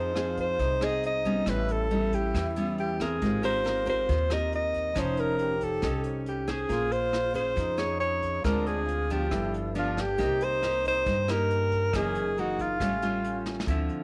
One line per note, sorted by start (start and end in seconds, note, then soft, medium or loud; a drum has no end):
0.00 0.56 F2 medium
0.00 0.57 F3 medium
0.00 0.13 C4 medium
0.00 0.13 D#4 medium
0.00 0.16 D#4 medium
0.00 0.13 G#4 medium
0.00 0.79 G#4 soft
0.00 0.39 C5 loud
0.00 0.80 C5 medium
0.00 0.81 D#5 medium
0.14 0.59 C4 medium
0.14 0.60 D#4 soft
0.14 0.61 F4 loud
0.14 0.60 G#4 medium
0.14 cross-stick medium
0.14 closed hi-hat soft
0.37 0.85 C5 loud
0.37 kick soft
0.37 closed hi-hat soft
0.59 1.43 C2 medium
0.59 1.45 C3 medium
0.59 1.48 D#4 medium
0.59 kick medium
0.59 closed hi-hat medium
0.81 1.22 C4 medium
0.81 1.22 D#4 medium
0.81 1.47 G#4 soft
0.81 1.22 G#4 medium
0.81 1.48 C5 soft
0.81 1.48 D#5 soft
0.81 1.05 D#5 loud
0.81 cross-stick medium
0.81 closed hi-hat soft
1.03 1.51 D#5 medium
1.03 closed hi-hat soft
1.25 1.87 G3 medium
1.25 1.88 B3 medium
1.25 1.88 C#4 medium
1.25 kick soft
1.25 closed hi-hat soft
1.45 2.30 A1 medium
1.45 2.32 A2 medium
1.45 3.17 E4 soft
1.45 1.90 E4 loud
1.45 3.18 G4 soft
1.45 3.19 B4 soft
1.45 kick medium
1.45 cross-stick medium
1.45 closed hi-hat medium
1.49 1.73 B4 medium
1.49 3.20 C#5 medium
1.68 2.16 A4 loud
1.68 closed hi-hat soft
1.91 2.53 G3 medium
1.91 2.53 B3 soft
1.91 2.53 C#4 soft
1.91 3.18 E4 loud
1.91 closed hi-hat soft
2.13 2.57 G4 medium
2.13 kick soft
2.13 closed hi-hat soft
2.34 3.18 E2 medium
2.34 3.20 E3 medium
2.34 kick medium
2.34 cross-stick medium
2.34 closed hi-hat medium
2.56 2.96 G3 medium
2.56 2.96 B3 medium
2.56 2.97 C#4 medium
2.56 closed hi-hat soft
2.78 3.03 G4 medium
2.78 closed hi-hat soft
3.00 3.42 C4 medium
3.00 3.44 G#4 medium
3.00 3.43 A#4 medium
3.00 kick soft
3.00 cross-stick medium
3.00 closed hi-hat soft
3.20 4.05 G#1 loud
3.20 4.07 G#3 medium
3.20 4.92 D#4 soft
3.20 4.65 F4 loud
3.20 4.93 G4 medium
3.20 4.93 A#4 soft
3.20 kick medium
3.20 closed hi-hat medium
3.26 4.94 C5 medium
3.43 3.62 C4 medium
3.43 3.62 G4 medium
3.43 3.62 A#4 medium
3.43 3.85 C5 loud
3.43 closed hi-hat soft
3.64 3.83 C4 medium
3.64 3.83 G4 medium
3.64 3.84 A#4 medium
3.64 cross-stick medium
3.64 closed hi-hat soft
3.86 4.26 C4 medium
3.86 4.27 G4 medium
3.86 4.27 A#4 medium
3.86 4.34 C5 loud
3.86 kick soft
3.86 closed hi-hat soft
4.09 4.92 D#2 loud
4.09 4.94 D#3 medium
4.09 kick medium
4.09 closed hi-hat medium
4.30 4.92 C4 medium
4.30 4.93 G4 medium
4.30 4.93 A#4 medium
4.30 4.54 D#5 loud
4.30 cross-stick medium
4.30 closed hi-hat soft
4.53 5.01 D#5 medium
4.53 closed hi-hat soft
4.74 kick soft
4.74 closed hi-hat soft
4.94 5.79 F1 medium
4.94 5.80 F3 medium
4.94 5.54 C#4 medium
4.94 6.02 D#4 medium
4.94 5.54 D#4 medium
4.94 5.37 D#4 medium
4.94 6.03 A5 soft
4.94 kick medium
4.94 cross-stick medium
4.94 closed hi-hat medium
4.98 6.04 C5 soft
4.98 5.21 C5 loud
4.98 6.04 C#5 medium
5.17 5.65 A#4 loud
5.17 closed hi-hat soft
5.39 6.44 G4 loud
5.39 closed hi-hat soft
5.61 6.06 A4 medium
5.61 kick soft
5.61 closed hi-hat soft
5.82 6.66 C2 medium
5.82 6.45 C#4 medium
5.82 6.45 D#4 medium
5.82 6.45 A4 medium
5.82 kick medium
5.82 cross-stick medium
5.82 closed hi-hat medium
6.03 6.69 D#4 soft
6.03 6.70 A4 soft
6.03 6.71 C5 soft
6.03 6.71 C#5 soft
6.03 closed hi-hat soft
6.26 6.52 G4 medium
6.26 closed hi-hat soft
6.48 6.88 C#4 medium
6.48 6.88 G#4 medium
6.48 6.94 G#4 medium
6.48 6.89 C5 medium
6.48 kick soft
6.48 cross-stick medium
6.48 closed hi-hat soft
6.68 7.53 A#1 medium
6.68 7.55 A#3 medium
6.68 7.52 F4 loud
6.68 8.40 F4 soft
6.68 8.41 G#4 soft
6.68 8.42 C6 medium
6.68 kick medium
6.68 closed hi-hat medium
6.92 7.35 C5 loud
6.92 closed hi-hat soft
7.13 cross-stick medium
7.13 closed hi-hat soft
7.34 7.75 C#4 medium
7.34 7.75 G#4 medium
7.34 7.75 C5 medium
7.34 7.80 C5 medium
7.34 kick soft
7.34 closed hi-hat soft
7.56 8.40 F2 loud
7.56 8.42 F3 medium
7.56 8.40 D#4 loud
7.56 kick medium
7.56 closed hi-hat medium
7.78 8.40 C#4 medium
7.78 8.41 G#4 medium
7.78 7.99 C#5 loud
7.78 cross-stick medium
7.78 closed hi-hat soft
8.00 8.41 C#5 loud
8.00 closed hi-hat soft
8.22 kick soft
8.22 closed hi-hat soft
8.42 9.27 D2 loud
8.42 9.29 D3 medium
8.42 9.06 G#3 medium
8.42 9.07 C4 medium
8.42 8.88 D4 loud
8.42 9.28 F4 medium
8.42 9.30 G#4 medium
8.42 8.69 A#4 medium
8.42 kick medium
8.42 cross-stick medium
8.42 closed hi-hat medium
8.46 9.07 F4 medium
8.46 9.31 C5 soft
8.46 9.32 D5 medium
8.66 9.13 G#4 loud
8.66 closed hi-hat soft
8.86 9.32 F4 medium
8.86 closed hi-hat soft
9.10 9.72 F3 medium
9.10 9.72 B3 medium
9.10 9.72 D4 medium
9.10 9.54 G4 medium
9.10 kick soft
9.10 closed hi-hat soft
9.29 10.15 G1 loud
9.29 10.17 G2 medium
9.29 9.76 E4 medium
9.29 10.16 G4 medium
9.29 10.17 A4 soft
9.29 kick medium
9.29 cross-stick medium
9.29 closed hi-hat medium
9.34 10.18 B4 soft
9.34 10.19 D5 soft
9.54 closed hi-hat soft
9.75 10.03 F3 medium
9.75 10.03 B3 medium
9.75 10.18 D4 medium
9.75 10.03 D4 medium
9.75 closed hi-hat soft
9.79 10.02 F4 medium
9.97 10.45 G4 loud
9.97 kick soft
9.97 cross-stick medium
9.97 closed hi-hat soft
10.17 11.02 C2 medium
10.17 11.03 C3 medium
10.17 10.58 A#3 medium
10.17 10.59 D#4 medium
10.17 11.62 D#4 loud
10.17 11.89 G4 medium
10.17 10.59 G4 medium
10.17 11.90 A#4 medium
10.17 kick medium
10.17 closed hi-hat medium
10.21 11.91 C5 medium
10.21 11.92 D#5 medium
10.41 10.86 C5 loud
10.41 closed hi-hat soft
10.63 11.25 A#3 medium
10.63 11.24 D#4 medium
10.63 11.25 G4 medium
10.63 cross-stick medium
10.63 closed hi-hat soft
10.85 11.32 C5 loud
10.85 kick soft
10.85 closed hi-hat soft
11.06 11.89 G2 loud
11.06 11.91 G2 medium
11.06 kick medium
11.06 closed hi-hat medium
11.28 11.90 A#3 medium
11.28 11.90 D#4 medium
11.28 11.90 G4 medium
11.28 11.98 A#4 loud
11.28 cross-stick medium
11.28 closed hi-hat soft
11.50 closed hi-hat soft
11.72 kick soft
11.72 closed hi-hat soft
11.91 12.76 F#1 loud
11.91 12.79 F#2 medium
11.91 12.22 E3 medium
11.91 12.33 C#4 loud
11.91 12.77 D#4 medium
11.91 12.78 G#4 medium
11.91 12.79 A#4 soft
11.91 kick medium
11.91 cross-stick medium
11.91 closed hi-hat medium
11.95 12.22 A#3 medium
11.95 12.22 D#4 medium
11.95 12.41 G#4 loud
11.95 12.80 D#5 medium
12.15 closed hi-hat soft
12.36 12.67 E3 soft
12.36 12.67 A#3 soft
12.36 12.77 D#4 medium
12.36 12.67 D#4 medium
12.36 12.63 F#4 medium
12.36 closed hi-hat soft
12.59 13.47 F4 medium
12.59 kick soft
12.59 closed hi-hat soft
12.78 13.63 A1 medium
12.78 13.65 A2 medium
12.78 12.93 G3 medium
12.78 13.21 C#4 medium
12.78 12.94 C#4 medium
12.78 13.64 F4 soft
12.78 13.65 G4 soft
12.78 13.66 C#5 soft
12.78 kick medium
12.78 cross-stick medium
12.78 closed hi-hat medium
12.82 12.94 F4 medium
12.82 13.67 E5 medium
13.02 13.64 G3 medium
13.02 13.64 C#4 medium
13.02 13.64 F4 medium
13.02 closed hi-hat soft
13.24 13.65 C#4 medium
13.24 closed hi-hat soft
13.46 snare soft
13.60 snare medium
13.67 13.87 D2 medium
13.67 14.04 D3 medium
13.67 14.04 F3 medium
13.67 14.04 C4 medium
13.67 14.04 E4 medium
13.67 14.04 A4 medium
13.67 14.04 C5 medium
13.67 14.04 E5 medium
13.67 kick medium
13.67 closed hi-hat medium
13.89 closed hi-hat soft